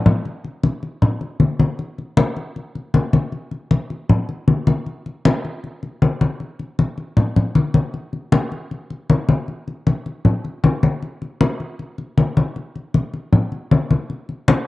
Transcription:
0.06 low conga medium
0.25 high conga soft
0.44 high conga soft
0.63 high conga medium
0.83 high conga soft
1.02 high conga soft
1.02 low conga medium
1.21 high conga soft
1.40 high conga medium
1.59 high conga medium
1.79 high conga soft
1.98 high conga soft
2.17 high conga loud
2.36 high conga soft
2.56 high conga soft
2.75 high conga soft
2.94 high conga medium
3.13 high conga medium
3.32 high conga soft
3.51 high conga soft
3.71 high conga medium
3.90 high conga soft
4.10 high conga soft
4.10 low conga medium
4.29 high conga soft
4.48 high conga medium
4.67 high conga medium
4.86 high conga soft
5.06 high conga soft
5.25 high conga loud
5.45 high conga soft
5.64 high conga soft
5.83 high conga soft
6.02 high conga medium
6.21 high conga medium
6.40 high conga soft
6.59 high conga soft
6.79 high conga medium
6.98 high conga soft
7.17 high conga soft
7.17 low conga medium
7.36 high conga soft
7.36 low conga medium
7.55 high conga medium
7.74 high conga medium
7.94 high conga soft
8.13 high conga soft
8.32 high conga medium
8.52 high conga soft
8.71 high conga soft
8.90 high conga soft
9.10 high conga medium
9.29 high conga medium
9.48 high conga soft
9.68 high conga soft
9.87 high conga medium
10.06 high conga soft
10.25 high conga soft
10.25 low conga medium
10.45 high conga soft
10.64 high conga medium
10.83 high conga medium
11.03 high conga soft
11.22 high conga soft
11.41 high conga medium
11.60 high conga soft
11.79 high conga soft
11.98 high conga soft
12.18 high conga medium
12.37 high conga medium
12.56 high conga soft
12.75 high conga soft
12.94 high conga medium
13.14 high conga soft
13.33 high conga soft
13.33 low conga medium
13.52 high conga soft
13.71 high conga medium
13.90 high conga medium
14.10 high conga soft
14.29 high conga soft
14.48 high conga loud

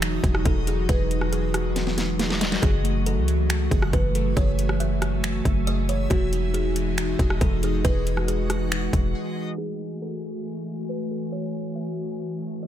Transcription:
0.00 0.20 E1 loud
0.00 1.11 E3 medium
0.00 2.59 E3 medium
0.00 6.07 F#3 medium
0.00 2.60 G#3 medium
0.00 2.59 D#4 medium
0.00 0.66 D#4 loud
0.00 2.60 F#4 medium
0.00 6.07 F#4 medium
0.00 2.59 D#5 loud
0.00 finger snap loud
0.00 closed hi-hat medium
0.24 0.45 E1 loud
0.24 0.88 G#4 medium
0.24 kick loud
0.24 closed hi-hat medium
0.35 cross-stick loud
0.45 0.87 E1 loud
0.45 0.66 A4 medium
0.45 kick loud
0.45 closed hi-hat medium
0.67 1.98 D#4 medium
0.67 0.88 G#4 medium
0.67 closed hi-hat medium
0.89 2.59 E1 loud
0.89 2.18 G#4 loud
0.89 1.30 B4 loud
0.89 kick loud
0.89 closed hi-hat medium
1.11 closed hi-hat medium
1.21 cross-stick medium
1.32 1.73 G#4 medium
1.32 closed hi-hat medium
1.54 cross-stick loud
1.54 closed hi-hat medium
1.76 2.63 E3 medium
1.76 snare medium
1.76 closed hi-hat medium
1.87 snare medium
1.98 snare medium
1.98 closed hi-hat medium
2.19 2.63 G#4 medium
2.19 snare loud
2.19 closed hi-hat medium
2.30 snare medium
2.41 snare loud
2.41 closed hi-hat medium
2.52 snare loud
2.62 3.19 F#1 loud
2.62 6.07 E3 medium
2.62 3.27 F#3 loud
2.62 6.07 A3 medium
2.62 3.03 G#4 loud
2.62 6.07 E5 medium
2.62 6.07 G#5 medium
2.62 kick loud
2.62 closed hi-hat medium
2.84 3.48 A3 medium
2.84 closed hi-hat medium
3.06 3.47 A4 medium
3.06 closed hi-hat medium
3.17 3.69 C#2 loud
3.28 4.58 F#3 medium
3.28 closed hi-hat medium
3.49 4.14 A3 medium
3.49 finger snap loud
3.49 closed hi-hat medium
3.71 3.92 F#1 loud
3.71 4.35 G#4 medium
3.71 kick loud
3.71 closed hi-hat medium
3.82 cross-stick loud
3.93 4.35 F#1 loud
3.93 4.14 B4 medium
3.93 kick medium
3.93 closed hi-hat medium
4.15 5.46 A3 medium
4.15 4.36 A4 medium
4.15 closed hi-hat medium
4.36 5.41 F#1 loud
4.36 5.66 G#4 loud
4.36 4.78 C#5 loud
4.36 kick loud
4.36 closed hi-hat medium
4.59 closed hi-hat medium
4.69 cross-stick loud
4.80 5.21 E5 medium
4.80 closed hi-hat medium
5.02 cross-stick loud
5.02 closed hi-hat medium
5.23 6.10 F#3 medium
5.23 finger snap loud
5.23 closed hi-hat medium
5.45 6.08 F#1 loud
5.45 kick loud
5.45 closed hi-hat medium
5.67 6.11 G#4 loud
5.67 5.88 D#5 medium
5.67 closed hi-hat medium
5.89 6.10 C#5 medium
5.89 closed hi-hat medium
6.10 7.15 E1 loud
6.10 9.55 E3 medium
6.10 6.75 E3 medium
6.10 9.55 G#3 medium
6.10 9.55 D#4 medium
6.10 6.51 F#4 loud
6.10 9.55 F#4 medium
6.10 9.55 D#5 medium
6.10 kick loud
6.10 closed hi-hat medium
6.32 6.97 D#4 medium
6.32 closed hi-hat medium
6.54 6.95 G#4 medium
6.54 closed hi-hat medium
6.76 8.06 E3 medium
6.76 closed hi-hat medium
6.98 7.62 D#4 medium
6.98 finger snap loud
6.98 closed hi-hat medium
7.19 7.40 E1 loud
7.19 7.84 G#4 loud
7.19 kick loud
7.19 closed hi-hat medium
7.30 cross-stick loud
7.41 7.83 E1 loud
7.41 7.62 A4 medium
7.41 kick loud
7.41 closed hi-hat medium
7.63 8.93 D#4 medium
7.63 7.84 G#4 medium
7.63 closed hi-hat medium
7.85 8.89 E1 loud
7.85 9.14 G#4 loud
7.85 8.25 B4 loud
7.85 kick loud
7.85 closed hi-hat medium
8.07 closed hi-hat medium
8.17 cross-stick medium
8.28 8.69 G#4 medium
8.28 closed hi-hat medium
8.50 cross-stick medium
8.50 closed hi-hat medium
8.72 9.59 E3 medium
8.72 finger snap loud
8.72 closed hi-hat medium
8.93 9.14 E1 loud
8.93 kick medium
8.93 closed hi-hat medium
9.15 9.58 G#4 medium
9.58 12.67 E3 medium
9.58 12.67 A3 medium
9.58 12.67 F#4 medium
9.58 9.99 G#4 medium
9.58 12.67 E5 medium
9.58 12.67 G#5 medium
10.02 10.43 A4 medium
10.89 11.10 B4 medium
11.11 11.32 A4 medium
11.32 11.73 C#5 loud
11.76 12.17 E5 medium
12.63 12.67 D#5 medium

